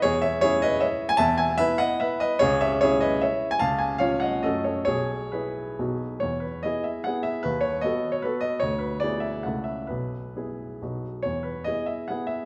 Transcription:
\new Staff \with { instrumentName = "Grand piano" } { \time 3/4 \key cis \dorian \tempo 4 = 146 << { <gis' cis''>8 <cis'' e''>8 <gis' cis''>8 <b' dis''>8 <cis'' e''>8. gis''16 | \key e \major <e'' a''>8 <e'' gis''>8 <b' e''>8 <dis'' fis''>8 <b' e''>8 <b' dis''>8 | <gis' cis''>8 <cis'' e''>8 <gis' cis''>8 <b' dis''>8 <cis'' e''>8. gis''16 | <eis'' a''>8 <eis'' gis''>8 <cis'' eis''>8 <dis'' fis''>8 <a' dis''>8 <a' cis''>8 |
<gis' cis''>4 <gis' b'>4. r8 | cis''8 b'8 dis''8 e''8 fis''8 e''8 | b'8 cis''8 dis''8. cis''16 b'8 dis''8 | cis''8 b'8 d''8 e''8 fis''8 e''8 |
b'2~ b'8 r8 | cis''8 b'8 dis''8 e''8 fis''8 e''8 | } \\ { e,4 <cis' e'>2 | e,4 <b e'>2 | cis,4 <cis' e'>2 | cis,4 <cis' eis'>4 <fis, a cis' fis'>4 |
b,,4 e'4 <b,, b dis' fis'>4 | e,4 <b e' gis'>4 <b e' gis'>4 | dis,4 <b fis' a'>4 <b fis' a'>4 | d,4 <b e' gis'>4 <cis, a e' a'>4 |
b,,4 <b e' gis'>4 <b,, b dis' fis'>4 | e,4 <b e' gis'>4 <b e' gis'>4 | } >> }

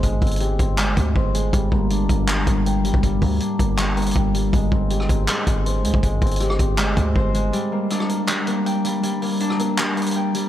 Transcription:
<<
  \new Staff \with { instrumentName = "Harp" } { \time 4/4 \key g \phrygian \tempo 4 = 160 <aes c' c''>8 c'8 g'8 c'8 aes8 c'8 c''8 aes8 | g8 bes8 d'8 bes8 g8 bes8 g''8 g8 | g8 bes8 d'8 bes8 g8 bes8 g''8 g8 | aes8 c'8 g'8 c'8 aes8 c'8 c''8 aes8 |
aes8 c'8 g'8 c'8 aes8 c'8 c''8 aes8 | g8 bes8 d'8 bes8 g8 bes8 g''8 g8 | g8 bes8 d'8 bes8 g8 bes8 g''8 g8 | }
  \new Staff \with { instrumentName = "808-style bass" } { \clef bass \time 4/4 \key g \phrygian g,,16 aes,,16 g,,4 g,,4 d,8 g,,4 | g,,8 g,,4 g,,4 g,,4~ g,,16 g,,16~ | g,,8 d,8 r8 g,,4. g,,4 | g,,8 g,,4 g,,8 r8 g,,4 d,16 g,,16~ |
g,,16 aes,,16 g,,4 g,,4 d,8 g,,4 | r1 | r1 | }
  \new DrumStaff \with { instrumentName = "Drums" } \drummode { \time 4/4 <hh bd>8 <hh hho bd>32 hh32 hh32 hh32 hh8 <hh bd>8 <hc hh>8 <hh bd>8 bd8 hh8 | <hh bd>8 bd8 hh8 <hh bd>8 <hc hh>8 <hh bd>8 hh8 hh16 bd16 | <hh bd>8 <hho bd>8 hh8 <hh bd>8 <hc hh>8 hh32 hh32 hh32 hh32 bd8 hh8 | <hh bd>8 bd8 hh16 ss16 <hh bd>8 <hc hh>8 <hh bd>8 hh8 hh16 bd16 |
<hh bd>8 <hh hho bd>32 hh32 hh32 hh32 <hh ss>16 ss16 <hh bd>8 <hc hh>8 <hh bd>8 bd8 hh8 | hh4 <hh ss>16 ss16 hh8 <hc hh>8 hh8 hh8 hh8 | hh8 hho8 hh16 ss16 hh8 <hc hh>8 hh32 hh32 hh32 hh32 r8 hh8 | }
>>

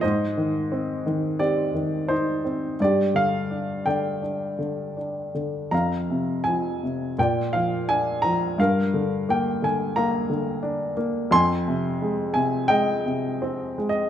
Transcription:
<<
  \new Staff \with { instrumentName = "Grand piano" } { \time 4/4 \key f \dorian \tempo 4 = 86 << { ees''2 d''4 c''4 | d''8 f''4 g''2 r8 | bes''4 aes''4 g''8 f''8 aes''8 bes''8 | f''4 g''8 aes''8 bes''4. r8 |
c'''4. aes''8 g''4~ \tuplet 3/2 { g''8. r16 ees''8 } | } \\ { c''2 g'2 | g'4. d''2 r8 | f''2 d''2 | bes'2 f''2 |
aes''2 ees''2 | } >> }
  \new Staff \with { instrumentName = "Grand piano" } { \clef bass \time 4/4 \key f \dorian aes,8 ees8 c'8 ees8 c'8 ees8 ees'8 c'8 | g,8 d8 d'8 d8 d'8 d8 d'8 d8 | f,8 c8 f8 c8 bes,8 f8 d'8 f8 | g,8 d8 bes8 d8 bes8 d8 d'8 bes8 |
f,8 c8 aes8 c8 aes8 c8 c'8 aes8 | }
>>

